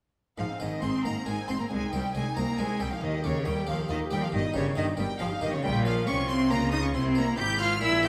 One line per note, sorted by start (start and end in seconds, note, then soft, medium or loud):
0.38 0.47 G#1 medium
0.38 0.58 G#2 medium
0.38 0.47 G#2 medium
0.38 0.46 F3 medium
0.38 0.49 D#4 medium
0.38 0.59 F5 medium
0.38 0.46 F5 medium
0.50 0.61 C4 medium
0.60 0.69 G#1 medium
0.60 0.80 G#2 medium
0.60 0.69 G#2 medium
0.60 0.84 D#3 medium
0.60 0.72 D#4 medium
0.60 0.84 C5 soft
0.60 0.83 D#5 medium
0.60 0.82 D#5 medium
0.71 0.83 C4 medium
0.82 0.91 G#1 medium
0.82 1.02 G#2 medium
0.82 0.91 G#2 medium
0.82 1.06 C4 medium
0.82 0.93 D#4 medium
0.82 1.06 G#4 soft
0.82 1.05 C6 medium
0.82 1.05 C6 loud
0.94 1.05 C4 medium
1.05 1.13 G#1 medium
1.05 1.13 G#2 medium
1.05 1.25 G#2 medium
1.05 1.27 A#3 medium
1.05 1.16 D#4 medium
1.05 1.28 C5 medium
1.05 1.26 A#5 medium
1.16 1.27 C4 medium
1.26 1.35 G#1 medium
1.26 1.46 G#2 medium
1.26 1.35 G#2 medium
1.26 1.36 G#3 medium
1.26 1.37 D#4 medium
1.26 1.49 A#4 soft
1.26 1.49 G#5 loud
1.26 1.48 G#5 medium
1.37 1.49 C4 medium
1.48 1.57 G#1 medium
1.48 1.68 G#2 medium
1.48 1.57 G#2 medium
1.48 1.54 C4 medium
1.48 1.60 D#4 medium
1.48 1.71 C5 medium
1.48 1.60 C6 medium
1.60 1.71 A#3 medium
1.60 1.69 C4 medium
1.60 1.71 A#5 medium
1.60 1.65 A#5 medium
1.70 1.91 C2 medium
1.70 1.79 C2 medium
1.70 1.93 G#3 medium
1.70 1.81 C4 medium
1.70 1.78 G#5 medium
1.70 1.92 G#5 loud
1.81 1.93 D#4 medium
1.91 2.13 C2 medium
1.91 2.01 C2 medium
1.91 2.15 G3 medium
1.91 2.03 C4 medium
1.91 2.16 C5 medium
1.91 2.13 G5 medium
1.91 2.15 G5 medium
2.03 2.14 D#4 medium
2.14 2.34 C2 medium
2.14 2.23 C2 medium
2.14 2.24 C2 medium
2.14 2.24 G#3 medium
2.14 2.24 C4 medium
2.14 2.38 G#4 medium
2.14 2.36 G#5 medium
2.14 2.37 G#5 loud
2.25 2.36 D#4 medium
2.35 2.56 C2 medium
2.35 2.45 C2 medium
2.35 2.61 A#3 medium
2.35 2.47 C4 medium
2.35 2.60 C5 medium
2.35 2.58 A#5 loud
2.35 2.58 A#5 medium
2.47 2.58 D#4 medium
2.58 2.67 C2 medium
2.58 2.78 C2 medium
2.58 2.67 C2 medium
2.58 2.82 G#3 medium
2.58 2.69 C4 medium
2.58 2.80 A#4 soft
2.58 2.80 G#5 medium
2.58 2.81 G#5 loud
2.70 2.81 D#4 medium
2.80 3.00 C2 medium
2.80 2.89 C2 medium
2.80 2.94 G3 medium
2.80 2.91 C4 medium
2.80 3.02 C5 medium
2.80 2.91 G5 medium
2.80 2.92 G5 loud
2.91 3.05 F3 medium
2.91 3.02 D#4 medium
2.91 3.02 F5 medium
2.91 3.03 F5 medium
3.01 3.22 D#2 medium
3.01 3.11 D#2 medium
3.01 3.25 D#3 medium
3.01 3.12 A#4 medium
3.01 3.24 D#5 medium
3.01 3.25 D#5 loud
3.13 3.24 G4 medium
3.24 3.44 D#2 medium
3.24 3.32 D#2 medium
3.24 3.49 C#3 medium
3.24 3.47 G4 medium
3.24 3.35 A#4 medium
3.24 3.46 C#5 medium
3.35 3.46 G4 medium
3.45 3.65 D#2 medium
3.45 3.54 D#2 medium
3.45 3.55 D#2 medium
3.45 3.69 G3 medium
3.45 3.56 A#4 medium
3.45 3.69 D#5 medium
3.45 3.67 G5 medium
3.45 3.68 G5 loud
3.57 3.68 G4 medium
3.67 3.87 D#2 medium
3.67 3.76 D#2 medium
3.67 3.77 D#2 medium
3.67 3.90 F3 medium
3.67 3.90 G4 medium
3.67 3.79 A#4 medium
3.67 3.90 F5 medium
3.67 3.77 F5 medium
3.79 3.90 G4 medium
3.88 4.09 D#2 medium
3.88 3.98 D#2 medium
3.88 3.99 D#2 medium
3.88 4.00 D#3 medium
3.88 4.11 F4 soft
3.88 4.00 A#4 medium
3.88 3.98 D#5 loud
3.88 3.99 D#5 medium
4.02 4.12 G4 medium
4.11 4.31 D#2 medium
4.11 4.20 D#2 medium
4.11 4.21 D#2 medium
4.11 4.23 G3 medium
4.11 4.33 G4 medium
4.11 4.23 A#4 medium
4.11 4.16 G5 medium
4.11 4.22 G5 loud
4.22 4.33 F3 medium
4.22 4.33 G4 medium
4.22 4.33 F5 medium
4.22 4.34 F5 medium
4.32 4.41 G1 medium
4.32 4.52 G2 medium
4.32 4.43 G2 medium
4.32 4.41 D#3 medium
4.32 4.44 G4 medium
4.32 4.55 D#5 medium
4.32 4.55 D#5 loud
4.45 4.55 D#4 medium
4.54 4.63 G1 medium
4.54 4.74 G2 medium
4.54 4.64 G2 medium
4.54 4.76 C#3 medium
4.54 4.66 G4 medium
4.54 4.77 A#4 medium
4.54 4.76 C#5 medium
4.54 4.64 C#5 loud
4.67 4.77 D#4 medium
4.75 4.85 G1 medium
4.75 4.96 G2 medium
4.75 4.86 G2 medium
4.75 4.86 D#3 loud
4.75 4.99 D#4 medium
4.75 4.87 G4 medium
4.75 4.85 D#5 medium
4.75 4.85 D#5 loud
4.88 4.99 D#4 medium
4.97 5.06 G1 medium
4.97 5.18 G2 medium
4.97 5.07 G2 medium
4.97 5.07 G3 medium
4.97 5.10 G4 medium
4.97 5.21 A#4 medium
4.97 5.20 G5 medium
4.97 5.20 G5 loud
5.10 5.21 D#4 medium
5.19 5.28 G1 medium
5.19 5.39 G2 medium
5.19 5.29 G2 medium
5.19 5.28 F3 loud
5.19 5.31 G4 medium
5.19 5.42 G#4 soft
5.19 5.27 F5 medium
5.19 5.43 F5 loud
5.31 5.42 D#4 medium
5.41 5.50 G1 medium
5.41 5.62 G2 medium
5.41 5.52 G2 medium
5.41 5.56 D#3 medium
5.41 5.53 G4 medium
5.41 5.64 A#4 medium
5.41 5.53 D#5 medium
5.41 5.53 D#5 loud
5.53 5.66 C#3 medium
5.53 5.64 D#4 medium
5.53 5.64 C#5 medium
5.63 6.05 A#1 medium
5.63 6.03 A#2 medium
5.63 6.05 A#2 loud
5.63 5.88 G3 loud
5.63 6.05 F4 medium
5.63 5.85 G5 loud
5.63 5.71 G5 medium
5.85 6.10 F3 medium
5.85 6.09 C#5 medium
5.85 6.07 F5 loud
5.85 6.07 F5 medium
6.07 6.51 C2 medium
6.07 6.47 C3 medium
6.07 6.51 C3 medium
6.07 6.30 C#4 loud
6.07 6.50 F4 medium
6.07 6.30 G4 medium
6.07 6.15 C#6 loud
6.07 6.29 C#6 loud
6.28 6.52 C4 medium
6.28 6.52 C#5 medium
6.28 6.50 C6 loud
6.28 6.51 C6 loud
6.51 6.95 C#2 medium
6.51 6.91 C#3 medium
6.51 6.95 C#3 medium
6.51 6.72 A#3 loud
6.51 6.94 F4 medium
6.51 6.73 C5 medium
6.51 6.73 A#5 loud
6.72 6.77 D#4 medium
6.72 6.94 C#5 medium
6.72 6.84 D#6 medium
6.72 6.84 D#6 loud
6.83 6.97 C#4 medium
6.83 6.87 C#6 medium
6.83 6.95 C#6 medium
6.94 7.38 C2 medium
6.94 7.34 C3 medium
6.94 7.38 C3 medium
6.94 7.19 C4 loud
6.94 7.38 E4 medium
6.94 7.02 C6 loud
6.94 7.03 C6 loud
7.15 7.41 A#3 medium
7.15 7.39 C5 medium
7.15 7.38 A#5 loud
7.15 7.38 A#5 medium
7.38 7.82 G#1 medium
7.38 7.78 G#2 medium
7.38 7.82 G#2 medium
7.38 7.81 E4 medium
7.38 7.61 G4 medium
7.38 7.61 G4 loud
7.38 7.60 G6 loud
7.59 7.82 F4 medium
7.59 7.83 C5 medium
7.59 7.82 F6 medium
7.59 7.83 F6 loud
7.81 8.08 A#1 medium
7.81 8.08 A#2 medium
7.81 8.08 E4 medium
7.81 8.06 E4 loud
7.81 8.04 A#4 soft
7.81 8.05 E6 loud
7.81 8.04 E6 loud
8.03 8.08 G4 medium
8.03 8.08 C5 medium
8.03 8.08 G6 medium
8.03 8.08 G6 loud